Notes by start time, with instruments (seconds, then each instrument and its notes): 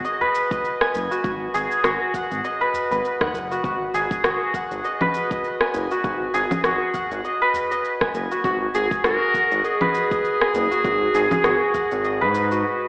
Already playing: santur F#4 G#4 B4 F#5 G#5
0.04 santur D#5, shaker
0.21 santur B4, udu
0.35 shaker
0.51 santur D#5, kick, shaker
0.65 shaker
0.81 santur G#5, cross-stick
0.94 analog synth bass F#1, udu, shaker
1.11 santur F#4, shaker
1.24 analog synth bass G#1, santur F#4, kick, shaker
1.54 analog synth bass G#1, santur G#4, shaker
1.71 shaker
1.84 analog synth bass G#1, santur F#4, cross-stick, shaker
2.14 santur F#5, kick, udu, shaker
2.31 analog synth bass G#1, shaker
2.44 santur D#5, shaker
2.61 santur B4
2.74 udu, shaker
2.91 analog synth bass G#1, santur B4, shaker
3.05 shaker
3.21 analog synth bass D#2, santur F#5, kick, cross-stick
3.34 analog synth bass F#1, shaker
3.51 santur F#4, shaker
3.64 analog synth bass G#1, santur F#4, kick, shaker
3.94 analog synth bass G#1, santur G#4, shaker
4.11 kick, shaker
4.24 analog synth bass G#1, santur F#4, cross-stick, shaker
4.54 santur F#5, kick, shaker
4.71 analog synth bass G#1, shaker
4.84 santur D#5, shaker
5.01 santur B4, low conga, udu
5.14 shaker
5.31 santur D#5, kick, shaker
5.44 shaker
5.61 santur G#5, cross-stick
5.74 analog synth bass F#1, udu, shaker
5.91 santur F#4, shaker
6.04 analog synth bass G#1, santur F#4, kick, shaker
6.34 analog synth bass G#1, santur G#4, shaker
6.51 low conga, shaker
6.64 analog synth bass G#1, santur F#4, cross-stick, shaker
6.94 santur F#5, kick, udu, shaker
7.11 analog synth bass G#1, shaker
7.25 santur D#5, shaker
7.42 santur B4
7.54 udu, shaker
7.71 santur D#5, shaker
7.85 shaker
8.01 santur G#5, kick, cross-stick
8.15 analog synth bass F#1, shaker
8.31 santur F#4, shaker
8.44 analog synth bass G#1, santur F#4, clarinet F#4, kick, shaker
8.75 analog synth bass G#1, santur G#4, clarinet G#4, shaker
8.91 kick, shaker
9.04 analog synth bass G#1, santur F#4, clarinet A#4, cross-stick, shaker
9.34 santur F#5, kick, shaker
9.51 analog synth bass G#1, shaker
9.64 clarinet G#4, santur D#5, shaker
9.81 santur B4, low conga, udu
9.94 shaker
10.11 santur D#5, kick, shaker
10.25 shaker
10.41 santur G#5, cross-stick
10.54 analog synth bass F#1, udu, shaker
10.71 santur F#4, shaker
10.84 analog synth bass G#1, santur F#4, kick, shaker
11.14 analog synth bass G#1, santur G#4, shaker
11.31 low conga, shaker
11.44 analog synth bass G#1, santur F#4, cross-stick, shaker
11.74 santur F#5, kick, udu, shaker
11.91 analog synth bass G#1, shaker
12.04 santur D#5, shaker
12.21 analog synth bass G#2, santur B4
12.34 udu, shaker
12.51 santur F#4, shaker